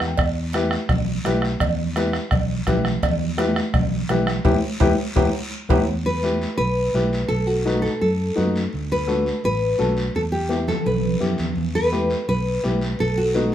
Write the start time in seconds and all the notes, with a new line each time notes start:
0.00 E2, bombo rim, short guiro
0.07 G5
0.17 E2, bombo low, bombo rim, cowbell, high conga, long guiro
0.53 E4 G4 B4, bombo rim, cowbell, high conga, short guiro
0.71 bombo rim, short guiro
0.89 B1, bombo low, bombo rim, cowbell, high conga, low conga, long guiro
1.24 B1 E4 G4 B4, bombo rim, cowbell, high conga, short guiro
1.42 bombo rim, short guiro
1.60 E2, bombo low, bombo rim, cowbell, high conga, low conga, long guiro
1.96 E4 G4 B4, bombo rim, cowbell, high conga, short guiro
2.13 bombo rim, short guiro
2.31 B1, bombo low, bombo rim, cowbell, high conga, low conga, long guiro
2.67 B1 E4 G4 B4, bombo low, bombo rim, cowbell, high conga, low conga, short guiro
2.85 bombo rim, short guiro
3.03 E2, bombo low, bombo rim, cowbell, high conga, low conga, long guiro
3.38 E4 G4 B4, bombo rim, cowbell, high conga, short guiro
3.56 bombo rim, short guiro
3.74 B1, bombo low, bombo rim, cowbell, high conga, low conga, long guiro
4.09 B1 E4 G4 B4, bombo rim, cowbell, high conga, low conga, short guiro
4.27 bombo rim, short guiro
4.45 E2 E4 G4 B4, bombo low, high conga, high timbale, long guiro
4.80 E2 E4 G4 B4, bombo low, high conga, high timbale, long guiro
5.16 E2 E4 G4 B4, bombo low, high conga, high timbale, long guiro
5.69 E2 E4 G4 B4, bombo low, high conga, high timbale, long guiro
5.87 E2, high conga, long guiro
6.06 B4
6.22 E4 G4 B4, high conga, short guiro
6.42 short guiro
6.58 B1 B4, high conga, long guiro
6.94 B1 E4 G4 B4, high conga, short guiro
7.13 short guiro
7.28 B1 A4, high conga, long guiro
7.47 F#4
7.65 D#4 F#4 B4, high conga, short guiro
7.82 A4, short guiro
8.01 F#2 A4, high conga, long guiro
8.36 F#2 D#4 F#4 B4, high conga, short guiro
8.56 short guiro
8.73 D2, high conga, long guiro
8.92 B4
9.07 D4 F#4 A4, high conga, short guiro
9.26 short guiro
9.43 A1 B4, high conga, long guiro
9.78 B1 D4 F#4 A4, high conga, short guiro
9.97 short guiro
10.14 E2 A4, high conga, long guiro
10.32 G4
10.49 B3 E4 G4, high conga, short guiro
10.68 A4, low conga, short guiro
10.86 B1 B4, low conga, long guiro
11.04 low conga
11.20 F#2 B3 E4 G4, short guiro
11.38 E2, low conga, short guiro
11.56 E2, high conga, long guiro
11.75 B4
11.92 B3 E4 G4, high conga, short guiro
12.10 short guiro
12.29 B1 B4, high conga, long guiro
12.63 B1 B3 E4 G4, high conga, short guiro
12.81 short guiro
12.99 B1 A4, high conga, long guiro
13.18 F#4
13.34 B3 D#4 F#4, high conga, short guiro